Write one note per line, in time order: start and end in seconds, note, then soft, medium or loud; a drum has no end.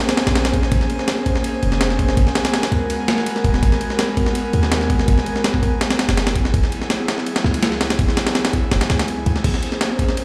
0.00 0.15 A#3 medium
0.00 0.15 C#4 medium
0.00 0.15 G#4 medium
0.00 0.16 C5 medium
0.00 9.46 G#5 medium
0.09 snare loud
0.09 ride medium
0.17 0.52 A#3 medium
0.17 0.52 C#4 medium
0.17 0.52 G#4 medium
0.17 0.52 C5 medium
0.17 snare loud
0.17 ride medium
0.27 0.70 A#1 medium
0.27 snare loud
0.27 ride medium
0.35 snare loud
0.35 ride medium
0.45 snare loud
0.45 ride medium
0.54 0.64 A#3 medium
0.54 0.63 C#4 medium
0.54 0.63 G#4 medium
0.54 0.64 C5 medium
0.54 kick loud
0.54 ride medium
0.63 snare soft
0.72 0.80 A#1 loud
0.72 1.61 A#3 medium
0.72 1.61 C#4 medium
0.72 1.61 G#4 medium
0.72 1.61 C5 medium
0.72 kick loud
0.72 ride medium
0.81 snare soft
0.90 ride medium
0.99 snare soft
1.08 snare loud
1.08 ride medium
1.26 kick loud
1.26 ride medium
1.35 snare soft
1.44 ride medium
1.63 2.16 F1 medium
1.63 1.97 A#3 medium
1.63 1.97 C#4 medium
1.63 1.97 G#4 medium
1.63 1.97 C5 loud
1.63 ride medium
1.72 snare medium
1.81 snare loud
1.81 ride medium
1.90 snare soft
1.99 2.09 A#3 medium
1.99 2.09 C#4 medium
1.99 2.09 G#4 medium
1.99 2.09 C5 medium
1.99 kick loud
1.99 ride medium
2.09 snare soft
2.17 2.26 G#1 loud
2.17 3.06 G#3 medium
2.17 3.06 B3 medium
2.17 3.06 F#4 medium
2.17 3.06 A#4 medium
2.17 kick loud
2.17 ride medium
2.27 snare soft
2.35 snare loud
2.35 ride medium
2.45 snare loud
2.45 ride medium
2.54 snare loud
2.54 ride medium
2.63 snare loud
2.63 ride medium
2.72 kick loud
2.72 ride medium
2.90 ride medium
3.08 3.43 G#3 medium
3.08 3.42 B3 medium
3.08 3.43 F#4 medium
3.08 3.43 A#4 medium
3.08 snare loud
3.08 ride medium
3.18 snare soft
3.26 ride medium
3.36 snare soft
3.44 3.61 D#1 medium
3.44 3.54 G#3 medium
3.44 3.54 B3 medium
3.44 3.55 F#4 medium
3.44 3.55 A#4 medium
3.44 kick medium
3.44 ride medium
3.54 snare soft
3.63 3.71 G#1 loud
3.63 4.52 G#3 medium
3.63 4.52 B3 medium
3.63 4.52 F#4 medium
3.63 4.52 A#4 medium
3.63 kick loud
3.63 ride medium
3.72 snare soft
3.81 ride medium
3.90 snare soft
3.99 snare loud
3.99 ride medium
4.17 kick loud
4.17 ride medium
4.26 snare soft
4.35 ride medium
4.53 5.07 D#2 medium
4.53 4.88 G#3 medium
4.53 4.88 B3 medium
4.53 4.88 F#4 medium
4.53 4.88 A#4 loud
4.53 ride medium
4.63 snare medium
4.72 snare loud
4.72 ride medium
4.81 snare soft
4.90 5.00 G#3 medium
4.90 5.00 B3 medium
4.90 5.00 F#4 medium
4.90 5.00 A#4 medium
4.90 kick loud
4.90 ride medium
4.99 snare soft
5.08 5.17 G#1 loud
5.08 5.80 G#3 medium
5.08 5.80 B3 medium
5.08 5.80 F#4 medium
5.08 5.80 A#4 medium
5.08 kick loud
5.08 ride medium
5.18 snare soft
5.26 ride medium
5.36 snare soft
5.44 snare loud
5.44 ride medium
5.54 kick loud
5.63 kick loud
5.63 ride medium
5.81 snare loud
5.81 ride medium
5.90 snare loud
5.90 ride medium
5.98 6.33 F#3 medium
5.98 6.33 A3 medium
5.98 6.33 E4 medium
5.98 6.33 G#4 loud
5.98 snare loud
5.98 ride medium
6.09 6.52 F#1 medium
6.09 snare loud
6.09 ride medium
6.17 snare loud
6.17 ride medium
6.27 snare loud
6.27 ride medium
6.35 6.45 F#3 medium
6.35 6.45 A3 medium
6.35 6.45 E4 medium
6.35 6.45 G#4 medium
6.35 kick loud
6.35 ride medium
6.45 snare medium
6.54 6.62 F#1 loud
6.54 7.43 F#3 medium
6.54 7.43 A3 medium
6.54 7.43 E4 medium
6.54 7.43 G#4 medium
6.54 kick loud
6.54 ride medium
6.63 snare soft
6.72 ride medium
6.82 snare soft
6.90 snare loud
6.90 ride medium
7.08 snare loud
7.08 ride medium
7.18 snare soft
7.26 ride medium
7.36 snare loud
7.36 ride medium
7.44 7.98 C#2 medium
7.44 7.79 F#3 medium
7.44 7.79 A3 medium
7.44 7.79 E4 medium
7.44 7.79 G#4 loud
7.44 snare soft
7.54 ride medium
7.63 snare loud
7.63 ride medium
7.72 snare soft
7.81 7.91 F#3 medium
7.81 7.91 A3 medium
7.81 7.91 E4 medium
7.81 7.91 G#4 medium
7.81 snare loud
7.81 ride medium
7.90 snare loud
7.90 ride medium
7.99 8.08 F#1 loud
7.99 8.89 F#3 medium
7.99 8.89 A3 medium
7.99 8.89 E4 medium
7.99 8.88 G#4 medium
7.99 kick loud
7.99 ride medium
8.08 snare soft
8.17 snare loud
8.17 ride medium
8.27 snare loud
8.27 ride medium
8.35 snare loud
8.35 ride medium
8.45 snare loud
8.45 ride medium
8.53 kick loud
8.53 ride medium
8.71 8.80 F#1 loud
8.71 snare loud
8.71 ride medium
8.81 snare loud
8.81 ride medium
8.90 9.25 C#2 loud
8.90 snare loud
8.90 ride medium
8.99 snare loud
8.99 ride medium
9.08 ride medium
9.17 9.42 F#3 medium
9.17 9.42 A3 medium
9.17 9.42 E4 medium
9.17 9.42 G#4 medium
9.26 9.43 C#2 loud
9.26 ride medium
9.36 snare medium
9.44 9.53 A#1 loud
9.44 10.24 A#3 medium
9.44 10.24 C#4 medium
9.44 10.24 G#4 medium
9.44 10.24 C5 medium
9.44 kick loud
9.44 crash medium
9.44 ride medium
9.54 snare soft
9.63 ride medium
9.72 snare soft
9.81 snare loud
9.81 ride medium
9.99 kick loud
9.99 ride medium
10.09 snare soft
10.17 ride medium